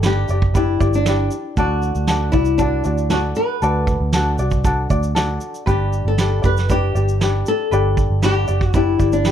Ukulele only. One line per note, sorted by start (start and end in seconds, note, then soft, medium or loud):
0.03 0.29 D4 medium
0.03 0.30 G4 medium
0.03 0.29 B4 medium
0.03 0.29 D5 medium
0.30 0.54 D4 soft
0.30 0.54 G4 soft
0.30 0.55 D5 medium
0.54 0.80 D4 medium
0.54 0.80 G4 medium
0.54 0.80 B4 medium
0.54 0.79 D5 medium
0.80 1.06 D4 medium
0.80 1.06 G4 medium
0.80 1.06 D5 medium
1.07 1.58 D4 medium
1.07 1.58 G4 medium
1.07 1.57 B4 medium
1.07 1.59 D5 medium
1.58 2.08 D4 medium
1.58 2.09 F#4 medium
1.58 2.06 A4 medium
1.58 2.10 D5 loud
2.08 2.34 D4 medium
2.08 2.34 F#4 medium
2.08 2.33 A4 medium
2.08 2.32 D5 medium
2.33 2.59 D4 soft
2.33 2.59 F#4 medium
2.33 2.59 D5 medium
2.59 2.85 D4 medium
2.59 2.85 F#4 medium
2.59 2.85 A4 medium
2.59 2.83 D5 medium
2.84 3.10 D4 soft
2.84 3.11 F#4 medium
2.84 3.10 D5 medium
3.10 3.62 D4 medium
3.10 3.62 F#4 medium
3.10 3.61 A4 medium
3.10 3.63 D5 medium
3.62 4.14 D4 medium
3.62 4.14 F#4 medium
3.62 4.12 A4 medium
3.62 4.15 D5 loud
4.14 4.39 D4 medium
4.14 4.39 F#4 medium
4.14 4.39 A4 medium
4.14 4.38 D5 medium
4.39 4.64 D4 soft
4.39 4.65 F#4 soft
4.39 4.64 D5 medium
4.65 4.90 D4 medium
4.65 4.90 F#4 medium
4.65 4.90 A4 medium
4.65 4.89 D5 medium
4.90 5.15 D4 soft
4.90 5.16 F#4 soft
4.90 5.16 D5 medium
5.15 5.67 D4 medium
5.15 5.67 F#4 medium
5.15 5.66 A4 medium
5.15 5.68 D5 medium
5.66 6.18 D4 medium
5.66 6.18 G4 medium
5.66 6.18 B4 medium
5.66 6.20 D5 medium
6.18 6.43 D4 medium
6.18 6.42 G4 medium
6.18 6.44 B4 medium
6.18 6.41 D5 medium
6.42 6.69 D4 soft
6.42 6.69 G4 soft
6.42 6.68 D5 medium
6.69 6.95 D4 medium
6.69 6.95 G4 medium
6.69 6.95 B4 medium
6.69 6.94 D5 medium
6.95 7.20 D4 soft
6.95 7.21 G4 soft
6.95 7.20 D5 soft
7.21 7.72 D4 medium
7.21 7.72 G4 medium
7.21 7.71 B4 medium
7.21 7.73 D5 medium
7.71 8.23 D4 medium
7.71 8.23 G4 loud
7.71 8.22 B4 medium
7.71 8.25 D5 medium
8.23 8.49 D4 medium
8.23 8.47 G4 medium
8.23 8.48 B4 medium
8.23 8.46 D5 medium
8.48 8.73 D4 soft
8.48 8.74 G4 medium
8.48 8.74 D5 medium
8.74 9.00 D4 medium
8.74 9.00 G4 medium
8.74 8.99 B4 medium
8.74 8.98 D5 medium
8.99 9.24 D4 soft
8.99 9.26 G4 medium
8.99 9.25 D5 medium
9.25 9.32 D4 medium
9.25 9.32 G4 medium
9.25 9.32 B4 medium
9.25 9.32 D5 medium